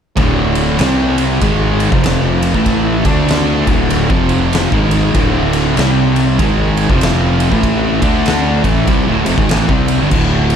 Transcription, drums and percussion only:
0.17 kick loud
0.17 ride medium
0.55 ride medium
0.79 snare loud
0.79 ride loud
1.18 ride medium
1.41 kick loud
1.41 ride loud
1.80 ride medium
1.92 kick loud
2.04 snare loud
2.04 ride loud
2.43 ride medium
2.54 kick loud
2.66 kick medium
2.66 ride loud
3.05 kick loud
3.05 ride medium
3.28 snare loud
3.28 ride loud
3.67 kick loud
3.67 ride medium
3.90 ride loud
4.10 kick loud
4.29 ride medium
4.53 snare loud
4.53 ride loud
4.72 kick loud
4.91 ride medium
5.14 kick loud
5.14 ride loud
5.53 ride medium
5.77 snare loud
5.77 ride loud
6.16 ride medium
6.39 kick loud
6.39 ride loud
6.77 ride medium
6.90 kick loud
7.01 snare loud
7.01 ride loud
7.40 ride medium
7.52 kick loud
7.63 kick loud
7.63 ride loud
8.02 kick loud
8.02 ride medium
8.26 snare loud
8.26 ride loud
8.64 kick loud
8.64 ride medium
8.87 kick loud
8.87 ride loud
9.26 ride medium
9.38 kick loud
9.49 snare loud
9.49 ride loud
9.69 kick loud
9.88 ride medium
10.11 kick loud
10.11 crash loud
10.50 ride medium

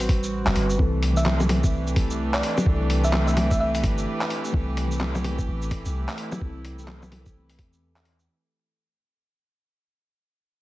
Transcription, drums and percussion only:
0.09 kick loud
0.09 open hi-hat medium
0.24 shaker medium
0.47 clap loud
0.56 open hi-hat medium
0.70 shaker medium
0.79 kick loud
1.03 open hi-hat medium
1.17 shaker medium
1.26 clap loud
1.26 low bongo medium
1.40 low bongo medium
1.40 shaker soft
1.49 open hi-hat medium
1.49 low bongo soft
1.64 kick loud
1.64 shaker medium
1.87 shaker soft
1.96 kick loud
1.96 open hi-hat medium
2.10 shaker medium
2.34 clap loud
2.43 open hi-hat medium
2.58 low bongo medium
2.58 shaker medium
2.66 kick loud
2.90 open hi-hat medium
3.04 shaker medium
3.13 clap loud
3.13 low bongo medium
3.28 shaker soft
3.37 open hi-hat medium
3.37 low bongo medium
3.51 kick loud
3.51 shaker medium
3.75 open hi-hat soft
3.75 shaker soft
3.84 kick loud
3.84 open hi-hat medium
3.98 shaker medium
4.21 clap loud
4.30 open hi-hat medium
4.45 shaker medium
4.54 kick loud
4.77 open hi-hat medium
4.92 shaker medium
5.01 clap loud
5.01 low bongo medium
5.15 low bongo medium
5.15 shaker soft
5.24 open hi-hat medium
5.24 low bongo medium
5.39 kick medium
5.39 shaker medium
5.62 shaker soft
5.71 kick loud
5.71 open hi-hat medium
5.86 shaker medium
6.09 clap loud
6.18 open hi-hat medium
6.32 low bongo medium
6.32 shaker medium
6.42 kick loud
6.65 open hi-hat medium
6.79 shaker medium
6.88 clap loud
6.88 low bongo medium
7.03 low bongo medium
7.03 shaker soft
7.12 open hi-hat medium
7.12 low bongo medium
7.26 kick loud
7.26 shaker medium
7.50 open hi-hat soft
7.50 shaker soft
7.59 kick loud
7.59 open hi-hat medium
7.73 shaker medium
7.96 clap loud
8.05 open hi-hat medium
8.20 shaker medium

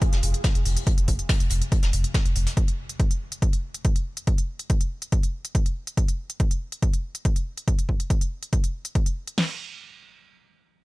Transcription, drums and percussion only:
0.01 kick loud
0.01 closed hi-hat medium
0.13 snare soft
0.13 closed hi-hat medium
0.22 closed hi-hat medium
0.22 open hi-hat loud
0.34 closed hi-hat medium
0.44 kick loud
0.44 snare loud
0.44 closed hi-hat medium
0.55 closed hi-hat medium
0.65 open hi-hat loud
0.65 open hi-hat medium
0.77 closed hi-hat medium
0.87 kick loud
0.87 closed hi-hat medium
0.98 closed hi-hat medium
1.08 kick medium
1.08 closed hi-hat medium
1.08 open hi-hat loud
1.19 closed hi-hat medium
1.29 kick loud
1.29 snare loud
1.29 closed hi-hat medium
1.40 closed hi-hat medium
1.40 closed hi-hat soft
1.49 closed hi-hat medium
1.49 open hi-hat loud
1.62 closed hi-hat medium
1.72 kick loud
1.72 closed hi-hat medium
1.83 snare medium
1.83 closed hi-hat medium
1.93 closed hi-hat medium
1.93 open hi-hat loud
2.04 closed hi-hat medium
2.14 kick loud
2.14 snare loud
2.14 closed hi-hat medium
2.26 closed hi-hat medium
2.35 closed hi-hat medium
2.35 open hi-hat loud
2.46 snare soft
2.46 open hi-hat medium
2.57 kick loud
2.57 closed hi-hat medium
2.68 closed hi-hat medium
2.89 closed hi-hat medium
3.00 kick loud
3.00 closed hi-hat medium
3.11 closed hi-hat medium
3.32 closed hi-hat medium
3.42 kick loud
3.42 closed hi-hat medium
3.53 closed hi-hat medium
3.74 closed hi-hat medium
3.85 kick loud
3.85 closed hi-hat medium
3.96 closed hi-hat medium
4.17 closed hi-hat medium
4.27 kick loud
4.27 closed hi-hat medium
4.38 closed hi-hat medium
4.59 closed hi-hat medium
4.70 kick loud
4.70 closed hi-hat medium
4.81 closed hi-hat medium
5.02 closed hi-hat medium
5.12 kick loud
5.12 closed hi-hat medium
5.23 closed hi-hat medium
5.45 closed hi-hat medium
5.55 kick loud
5.55 closed hi-hat medium
5.66 closed hi-hat medium
5.87 closed hi-hat medium
5.97 kick loud
5.97 closed hi-hat medium
6.08 closed hi-hat medium
6.30 closed hi-hat medium
6.40 kick loud
6.40 closed hi-hat medium
6.51 closed hi-hat medium
6.72 closed hi-hat medium
6.82 kick loud
6.82 closed hi-hat medium
6.94 closed hi-hat medium
7.15 closed hi-hat medium
7.25 kick loud
7.25 closed hi-hat medium
7.36 closed hi-hat medium
7.58 closed hi-hat medium
7.68 kick loud
7.68 closed hi-hat medium
7.79 closed hi-hat medium
7.89 kick medium
8.00 closed hi-hat medium
8.10 kick loud
8.10 closed hi-hat medium
8.21 closed hi-hat medium
8.43 closed hi-hat medium
8.53 kick loud
8.53 closed hi-hat medium
8.64 closed hi-hat medium
8.85 closed hi-hat medium
8.95 kick loud
8.95 closed hi-hat medium
9.06 closed hi-hat medium
9.27 closed hi-hat medium
9.38 snare loud
9.38 crash medium

